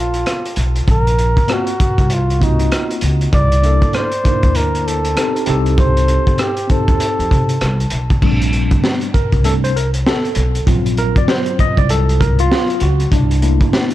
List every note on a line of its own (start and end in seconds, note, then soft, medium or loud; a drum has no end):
0.00 0.22 A#1 medium
0.00 0.58 F4 medium
0.14 closed hi-hat medium
0.26 cross-stick medium
0.26 closed hi-hat medium
0.45 closed hi-hat soft
0.56 0.80 B1 medium
0.56 closed hi-hat medium
0.76 closed hi-hat soft
0.88 1.34 A#1 medium
0.88 1.54 A#4 loud
0.88 kick loud
0.88 closed hi-hat medium
1.07 closed hi-hat medium
1.19 closed hi-hat medium
1.37 kick medium
1.37 closed hi-hat medium
1.47 1.71 A#3 medium
1.47 1.72 C4 medium
1.47 1.73 F4 medium
1.47 1.73 F#4 medium
1.47 cross-stick loud
1.47 closed hi-hat medium
1.53 2.15 F#4 medium
1.67 closed hi-hat soft
1.80 kick medium
1.80 closed hi-hat medium
1.98 2.68 C2 medium
1.98 kick medium
1.98 closed hi-hat medium
2.10 2.45 F4 medium
2.10 closed hi-hat medium
2.30 closed hi-hat soft
2.39 3.27 A#3 medium
2.39 3.28 C4 medium
2.39 3.28 F4 medium
2.39 3.29 F#4 medium
2.39 kick medium
2.39 closed hi-hat medium
2.44 3.03 D#4 medium
2.59 closed hi-hat medium
2.72 cross-stick loud
2.72 closed hi-hat medium
2.91 closed hi-hat soft
3.01 3.25 C#2 medium
3.01 closed hi-hat medium
3.21 closed hi-hat soft
3.33 3.79 C2 medium
3.33 3.97 D5 loud
3.33 kick loud
3.33 closed hi-hat medium
3.52 closed hi-hat medium
3.62 4.08 A#3 medium
3.62 4.09 D4 medium
3.62 4.09 E4 medium
3.62 4.10 A4 medium
3.62 closed hi-hat medium
3.82 kick medium
3.82 closed hi-hat soft
3.93 4.58 C5 loud
3.93 cross-stick medium
3.93 closed hi-hat medium
4.12 closed hi-hat medium
4.24 5.11 A#3 medium
4.24 5.12 D4 medium
4.24 4.33 D#4 soft
4.24 5.13 A#4 medium
4.24 kick medium
4.24 closed hi-hat medium
4.33 5.15 E4 medium
4.43 5.13 D2 medium
4.43 kick medium
4.43 closed hi-hat soft
4.55 4.89 A#4 loud
4.55 closed hi-hat medium
4.75 closed hi-hat soft
4.87 5.47 A4 medium
4.87 closed hi-hat medium
5.05 closed hi-hat medium
5.15 5.44 C4 medium
5.15 5.46 D#4 medium
5.15 5.47 G4 medium
5.15 5.48 A4 medium
5.15 cross-stick medium
5.15 closed hi-hat medium
5.36 closed hi-hat soft
5.46 6.16 C2 medium
5.46 6.50 C4 medium
5.46 6.50 D#4 medium
5.46 6.51 G4 medium
5.46 6.52 A4 medium
5.46 closed hi-hat medium
5.66 closed hi-hat soft
5.78 6.42 C5 loud
5.78 kick loud
5.78 closed hi-hat medium
5.97 closed hi-hat medium
6.08 closed hi-hat medium
6.27 kick loud
6.27 closed hi-hat soft
6.38 6.73 G4 medium
6.38 cross-stick loud
6.38 closed hi-hat medium
6.57 closed hi-hat soft
6.68 7.55 C4 medium
6.68 7.56 D#4 medium
6.68 7.57 G4 medium
6.68 7.93 A4 medium
6.68 7.57 C5 medium
6.68 kick medium
6.68 closed hi-hat medium
6.88 6.97 D#2 medium
6.88 kick medium
6.88 closed hi-hat soft
7.00 closed hi-hat medium
7.19 7.28 F2 medium
7.19 closed hi-hat soft
7.31 7.54 C3 medium
7.31 kick medium
7.31 closed hi-hat medium
7.49 closed hi-hat medium
7.61 7.84 C2 medium
7.61 cross-stick medium
7.61 closed hi-hat medium
7.80 closed hi-hat soft
7.90 8.15 B1 medium
7.90 closed hi-hat medium
8.10 kick medium
8.10 closed hi-hat soft
8.22 8.68 A#1 medium
8.22 9.10 G3 medium
8.22 9.10 A3 soft
8.22 9.10 C4 soft
8.22 9.11 D4 medium
8.22 kick loud
8.22 crash medium
8.42 closed hi-hat medium
8.53 closed hi-hat medium
8.71 kick loud
8.71 closed hi-hat medium
8.84 snare medium
9.01 closed hi-hat medium
9.14 9.46 A#4 medium
9.14 kick medium
9.14 closed hi-hat medium
9.32 10.02 C2 medium
9.32 kick medium
9.32 closed hi-hat soft
9.44 9.72 G3 soft
9.44 9.72 A3 soft
9.44 9.72 C4 soft
9.44 9.72 D4 soft
9.44 9.53 A4 medium
9.44 closed hi-hat medium
9.64 9.76 C5 medium
9.64 closed hi-hat medium
9.76 9.90 A#4 medium
9.76 closed hi-hat medium
9.94 closed hi-hat medium
10.06 10.64 A4 medium
10.06 snare loud
10.25 closed hi-hat soft
10.35 10.59 B1 medium
10.35 closed hi-hat medium
10.55 closed hi-hat soft
10.66 11.13 A#1 medium
10.66 13.08 F#3 medium
10.66 13.08 C4 medium
10.66 12.39 F4 medium
10.66 kick loud
10.66 closed hi-hat medium
10.86 closed hi-hat medium
10.97 11.17 A#4 medium
10.97 closed hi-hat medium
11.16 11.29 D5 medium
11.16 kick loud
11.16 closed hi-hat medium
11.28 11.61 C5 loud
11.28 snare loud
11.46 closed hi-hat medium
11.59 11.79 D#5 loud
11.59 kick medium
11.59 closed hi-hat medium
11.77 12.47 C2 medium
11.77 11.90 D5 loud
11.77 kick medium
11.77 closed hi-hat soft
11.89 12.21 A4 medium
11.89 closed hi-hat loud
12.09 closed hi-hat soft
12.20 12.39 A#4 medium
12.20 kick medium
12.20 closed hi-hat medium
12.39 12.83 F4 loud
12.39 closed hi-hat medium
12.52 snare loud
12.70 closed hi-hat soft
12.80 13.04 C#2 medium
12.80 13.10 F#4 medium
12.80 closed hi-hat medium
13.00 closed hi-hat soft
13.12 13.58 C2 medium
13.12 13.42 D4 medium
13.12 kick loud
13.12 closed hi-hat medium
13.31 closed hi-hat medium
13.42 13.94 A3 medium
13.42 13.94 A#3 medium
13.42 13.94 D4 soft
13.42 13.94 E4 medium
13.42 closed hi-hat medium
13.61 kick medium
13.61 closed hi-hat medium
13.73 snare loud
13.90 closed hi-hat soft